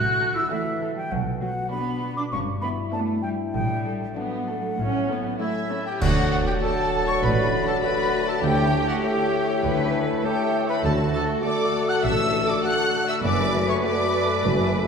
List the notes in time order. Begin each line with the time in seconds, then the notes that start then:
Already playing: A1 D3 A3 F#4 A4 F#6
0.21 A4
0.35 E4 E6
0.50 E3 A3 F#4 D5 E5
0.82 A4
0.96 G3 G5
1.11 B1 B2 F#3 F#5
1.41 F#3 F#4 F#5
1.70 B3 D4 F#4 D5 B5
2.02 F#4
2.17 D4 D6
2.32 G1 G2 C#4 C#6
2.62 B3 E4 B5
2.92 A3 B3 D4 E4 D5 A5
3.22 G3 E4 G5
3.53 A1 A2 G3 G5
3.85 A4
4.15 F#3 B3 D4 D5 F#5
4.47 A3 A4
4.77 A1 A2 C#4
5.08 B3 A4
5.39 A3 C#4 E4 C#5 E5
5.70 C#4 A4
5.86 G4 G5
6.01 D2 D3 F#3 A3 F#4 D5 F#5, concert bass drum, crash
6.22 D4
6.31 F#4 F#5
6.42 A4
6.47 G4 G5
6.61 A3 F#4 A4 D5 A5
6.82 F#5
7.02 D5
7.07 C#5 C#6
7.22 A1 A3 D4 B4 B5
7.43 D4
7.63 A4
7.67 A4 A5
7.81 A3 F#4 B4 D5 B5
8.04 F#5
8.24 D5 A5
8.28 A4 A5
8.43 D2 D3 A3 E4 G4 C#5 G5
8.64 C#4
8.84 A4
8.88 F#4 F#5
9.02 A3 E4 G4 C#5 G5
9.24 E5
9.44 C#5
9.63 D2 D3 B4
9.84 C#4
10.04 A4
10.23 A3 E4 G4 A4 C#5 G5
10.44 E5
10.64 C#5
10.69 B4 B5
10.84 D2 D3 A3 F#4 A4 A5
11.04 D4
11.13 A4 A5
11.24 A4
11.43 A3 F#4 A4 D5 D6
11.64 F#5
11.84 D5
11.88 F#5 F#6
12.03 A1 A3 E5 E6
12.25 D4
12.45 A4 D5 D6
12.50 D5 D6
12.63 A3 F#4 D5 F#5 F#6
12.85 F#5
13.04 D5 E6
13.08 E5 E6
13.22 F#1 F#2 A3 B4 D5 D6
13.44 A3
13.65 F#4 C#5
13.69 C#5 C#6
13.84 A3 F#4 A4 D5 D6
14.04 D5
14.25 A4
14.44 F#1 F#2
14.65 A3